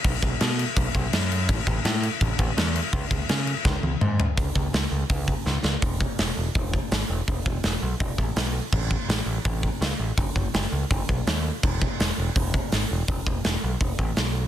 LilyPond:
<<
  \new Staff \with { instrumentName = "Picked electric bass" } { \clef bass \time 4/4 \key e \major \tempo 4 = 165 b,,8 b,,8 b,4 b,,8 b,,8 fis,4 | a,,8 a,,8 a,4 a,,8 a,,8 e,4 | cis,8 cis,8 cis4 cis,8 cis,8 gis,4 | cis,8 cis,8 cis,8 cis,8 cis,4 cis,8 cis,8 |
e,,4 e,,8 e,,8 e,,4 gis,,8 e,,8 | e,,8 e,,8 e,,8 b,,8 e,,8 a,,8 b,,4 | a,,4 a,,8 a,,8 a,,4 cis,8 a,,8 | fis,,8 fis,,8 fis,,8 cis,8 fis,,8 b,,8 dis,4 |
e,,4 e,,8 e,,8 e,,4 gis,,8 e,,8 | e,,8 e,,8 e,,8 b,,8 e,,8 a,,8 b,,4 | }
  \new DrumStaff \with { instrumentName = "Drums" } \drummode { \time 4/4 <cymc bd>8 <cymc bd>8 <cymc sn>8 cymc8 <cymc bd>8 <cymc bd>8 <cymc sn>8 cymc8 | <cymc bd>8 <cymc bd>8 <cymc sn>8 cymc8 <cymc bd>8 <cymc bd>8 <cymc sn>8 cymc8 | <cymc bd>8 <cymc bd>8 <cymc sn>8 cymc8 <bd sn>8 tommh8 toml8 tomfh8 | <hho bd>8 bd8 <hho sn>4 <hho bd>8 bd8 sn8 sn8 |
<hho bd>8 bd8 <hho sn>4 <hho bd>8 bd8 <hho sn>4 | <hho bd>8 bd8 <hho sn>4 <hho bd>8 bd8 <hho sn>4 | <cymc bd>8 bd8 <hho sn>4 <hho bd>8 bd8 <hho sn>4 | <hho bd>8 bd8 <hho sn>4 <hho bd>8 bd8 <hho sn>4 |
<cymc bd>8 bd8 <hho sn>4 <hho bd>8 bd8 <hho sn>4 | <hho bd>8 bd8 <hho sn>4 <hho bd>8 bd8 <hho sn>4 | }
>>